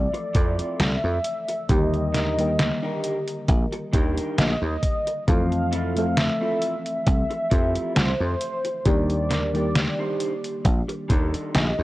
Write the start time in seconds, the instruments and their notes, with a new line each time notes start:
Already playing: fm electric piano E3 F3 A3 C4 A4 E5, soft synth lead D5
0.14 muted clean electric guitar stroke, closed hi-hat
0.34 slap bass F2, clean electric guitar C4 E4 F4 A4, kick, closed hi-hat
0.59 muted slap bass stroke, closed hi-hat
0.80 slap bass C2, soft synth lead E5, snare, closed hi-hat
1.04 slap bass F2
1.24 closed hi-hat
1.49 muted clean electric guitar stroke, closed hi-hat
1.69 slap bass D#2, fm electric piano D3 D#3 G3 A#3 G4, soft synth lead D#5, kick, closed hi-hat
1.94 closed hi-hat
2.13 clean electric guitar D4 D#4 G4 A#4, snare, closed hi-hat
2.37 fm electric piano D#3 G3 A#3 G4 A#4, closed hi-hat
2.59 snare, closed hi-hat
2.82 clean electric guitar D4 D#4 G4 A#4
3.04 closed hi-hat
3.28 closed hi-hat
3.48 slap bass A#1, muted clean electric guitar stroke, kick, closed hi-hat
3.72 muted clean electric guitar stroke, closed hi-hat
3.93 slap bass D#2, clean electric guitar D4 D#4 G4 A#4, kick, closed hi-hat
4.17 muted slap bass stroke, closed hi-hat
4.38 slap bass A#1, soft synth lead D#5, snare, closed hi-hat
4.62 slap bass D#2
4.83 kick, closed hi-hat
5.07 muted clean electric guitar stroke, closed hi-hat
5.27 slap bass F2, fm electric piano E3 F3 A3 C4 A4, soft synth lead F5, kick, closed hi-hat
5.52 closed hi-hat
5.72 clean electric guitar C4 E4 F4 A4, closed hi-hat
5.95 fm electric piano F3 A3 C4 A4 E5, closed hi-hat
6.17 soft synth lead E5, snare, closed hi-hat
6.41 clean electric guitar C4 E4 F4 A4
6.62 closed hi-hat
6.86 closed hi-hat
7.06 slap bass C2, soft synth lead E5, muted clean electric guitar stroke, kick, closed hi-hat
7.30 muted clean electric guitar stroke, closed hi-hat
7.51 slap bass F2, clean electric guitar C4 E4 F4 G4, kick, closed hi-hat
7.76 muted slap bass stroke, closed hi-hat
7.95 slap bass C2, soft synth lead C5, snare, closed hi-hat
8.20 slap bass F2
8.41 closed hi-hat
8.65 muted clean electric guitar stroke, closed hi-hat
8.85 slap bass D#2, fm electric piano D#3 G3 A#3 D4 G4, soft synth lead D5, kick, closed hi-hat
9.10 closed hi-hat
9.30 clean electric guitar D4 D#4 G4 A#4, snare, closed hi-hat
9.53 fm electric piano D#3 G3 A#3 G4, closed hi-hat
9.75 snare, closed hi-hat
9.99 clean electric guitar D4 D#4 G4 C5
10.20 closed hi-hat
10.44 closed hi-hat
10.65 slap bass A#1, muted clean electric guitar stroke, kick, closed hi-hat
10.88 muted clean electric guitar stroke, closed hi-hat
11.09 slap bass D#2, clean electric guitar D4 D#4 G4 A4, kick, closed hi-hat
11.34 muted slap bass stroke, closed hi-hat
11.54 slap bass A#1, soft synth lead D#5, snare, closed hi-hat
11.79 slap bass D#2